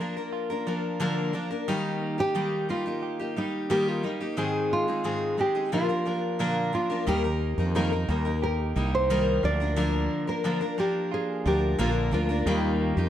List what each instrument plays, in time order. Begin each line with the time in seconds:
Already playing: clean electric guitar F3 F4, nylon-string guitar A#4
0.00 steel-string acoustic guitar F3 A#3 D4 A#4
0.17 steel-string acoustic guitar A#3 D4 A#4
0.33 clean electric guitar F4
0.50 steel-string acoustic guitar A#3 D4 A#4
0.67 steel-string acoustic guitar F3 A#3 D4 A#4
1.00 steel-string acoustic guitar D3 F3 A#3 D4 A#4
1.33 steel-string acoustic guitar F3 A#3 D4 A#4
1.51 steel-string acoustic guitar A#3 D4 A#4
1.68 steel-string acoustic guitar D#3 G3 A#3 D#4 G4, nylon-string guitar D#4
2.02 clean electric guitar A#3
2.18 steel-string acoustic guitar A#3 D#4 G4, nylon-string guitar G4
2.35 steel-string acoustic guitar D#3 G3 A#3 D#4 G4
2.69 steel-string acoustic guitar G3 A#3 D#4 G4, nylon-string guitar F4
2.86 steel-string acoustic guitar A#3 D#4 G4
3.03 clean electric guitar G4
3.19 steel-string acoustic guitar A#3 D#4 G4
3.36 steel-string acoustic guitar G3 A#3 D#4 G4, nylon-string guitar D#4
3.70 steel-string acoustic guitar D#3 G3 A#3 D#4 G4, nylon-string guitar G4
3.88 nylon-string guitar F4
4.03 steel-string acoustic guitar G3 A#3 D#4 G4, nylon-string guitar D#4
4.20 steel-string acoustic guitar A#3 D#4 G4
4.37 steel-string acoustic guitar G#2 D#3 G#3 C4 D#4 G#4
4.71 clean electric guitar G#3, nylon-string guitar F4
4.88 steel-string acoustic guitar G#3 C4 D#4 G#4
5.04 steel-string acoustic guitar G#2 D#3 G#3 C4 D#4 G#4
5.37 steel-string acoustic guitar G#3 C4 D#4 G#4, nylon-string guitar G4
5.55 steel-string acoustic guitar G#3 C4 D#4 G#4
5.72 steel-string acoustic guitar A#2 D3 F3 A#3 D4 A#4, nylon-string guitar F4
5.89 steel-string acoustic guitar F3 A#3 D4 A#4
6.06 steel-string acoustic guitar F3 A#3 D4 A#4
6.39 steel-string acoustic guitar A#2 D3 F3 A#3 D4 A#4
6.73 steel-string acoustic guitar F3 A#3 D4 A#4, nylon-string guitar F4
6.90 steel-string acoustic guitar F3 A#3 D4 A#4
7.07 fretless electric bass D#2, steel-string acoustic guitar D#3 G3 A#3 D#4 A#4, nylon-string guitar G4
7.24 steel-string acoustic guitar A#3 D#4 A#4
7.41 clean electric guitar A#3
7.58 fretless electric bass F2, steel-string acoustic guitar A#3 D#4 A#4
7.75 steel-string acoustic guitar D#3 G3 A#3 D#4 A#4, nylon-string guitar A#4
7.91 steel-string acoustic guitar A#3 D#4 A#4
8.09 fretless electric bass D#2, steel-string acoustic guitar G3 A#3 D#4 A#4
8.25 steel-string acoustic guitar A#3 D#4 A#4
8.42 clean electric guitar G4, nylon-string guitar A#4
8.76 fretless electric bass C2, steel-string acoustic guitar G3 A#3 D#4 A#4
8.95 nylon-string guitar C5
9.10 steel-string acoustic guitar D#3 G3 A#3 D#4 A#4
9.43 fretless electric bass D2, steel-string acoustic guitar F3 A#3 D4 A#4, nylon-string guitar D5
9.60 steel-string acoustic guitar A#3 D4 A#4
9.76 steel-string acoustic guitar D3 F3 A#3 D4 A#4
10.11 clean electric guitar A#3
10.27 steel-string acoustic guitar A#3 D4 A#4, nylon-string guitar A#4
10.44 steel-string acoustic guitar D3 F3 A#3 D4 A#4
10.61 steel-string acoustic guitar A#3 D4 A#4
10.78 steel-string acoustic guitar F3 A#3 D4 A#4, nylon-string guitar G4
11.12 clean electric guitar F4, nylon-string guitar G#4
11.46 fretless electric bass D2, steel-string acoustic guitar F3 A#3 D4 A#4, nylon-string guitar G4
11.79 fretless electric bass A#1, steel-string acoustic guitar D3 F3 A#3 D4 A#4, nylon-string guitar F4
12.11 fretless electric bass D2, steel-string acoustic guitar F3 A#3 D4 A#4, nylon-string guitar F4
12.29 steel-string acoustic guitar A#3 D4 A#4
12.46 fretless electric bass D#2, steel-string acoustic guitar D#3 G3 A#3 D#4 G4, felt piano G3 D#4 A#4
12.80 clean electric guitar A#3
12.97 fretless electric bass F2, steel-string acoustic guitar A#3 D#4 G4